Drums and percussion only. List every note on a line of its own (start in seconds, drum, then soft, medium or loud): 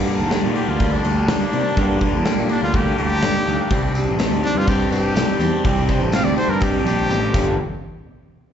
0.07 open hi-hat medium
0.31 snare loud
0.31 open hi-hat medium
0.44 snare soft
0.55 open hi-hat medium
0.80 kick loud
0.80 open hi-hat medium
1.05 open hi-hat medium
1.28 snare loud
1.28 open hi-hat medium
1.53 open hi-hat medium
1.77 kick loud
1.77 open hi-hat medium
2.01 kick medium
2.01 open hi-hat medium
2.25 snare loud
2.25 open hi-hat medium
2.49 open hi-hat medium
2.74 kick loud
2.74 open hi-hat medium
2.98 open hi-hat medium
3.23 snare loud
3.23 open hi-hat medium
3.47 open hi-hat medium
3.71 kick loud
3.71 open hi-hat medium
3.71 tambourine soft
3.95 open hi-hat soft
3.95 tambourine medium
4.19 snare loud
4.19 open hi-hat medium
4.19 tambourine loud
4.31 tambourine soft
4.43 open hi-hat medium
4.43 tambourine soft
4.56 tambourine soft
4.67 kick loud
4.67 open hi-hat medium
4.67 tambourine medium
4.79 tambourine soft
4.92 open hi-hat medium
4.92 tambourine medium
5.04 tambourine soft
5.16 snare loud
5.16 open hi-hat medium
5.16 tambourine medium
5.40 open hi-hat medium
5.40 tambourine medium
5.65 kick loud
5.65 open hi-hat medium
5.65 tambourine soft
5.77 tambourine soft
5.88 kick medium
5.88 open hi-hat medium
5.88 tambourine medium
6.00 tambourine soft
6.12 snare loud
6.12 open hi-hat medium
6.12 tambourine medium
6.24 snare soft
6.24 tambourine soft
6.36 open hi-hat medium
6.36 tambourine soft
6.48 tambourine soft
6.60 kick loud
6.60 open hi-hat medium
6.60 tambourine medium
6.86 open hi-hat medium
6.86 tambourine medium
6.98 tambourine soft
7.10 high tom medium
7.10 tambourine medium
7.34 kick loud
7.34 crash medium
7.34 tambourine medium